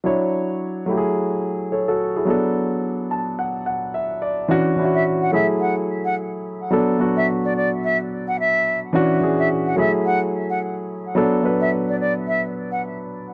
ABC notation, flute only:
X:1
M:4/4
L:1/16
Q:"Swing 16ths" 1/4=108
K:Bdor
V:1 name="Flute"
z16 | z16 | z3 e z f e z f z2 f z4 | z3 e z d d z e z2 f e3 z |
z3 e z f e z f z2 f z4 | z3 e z d d z e z2 f z4 |]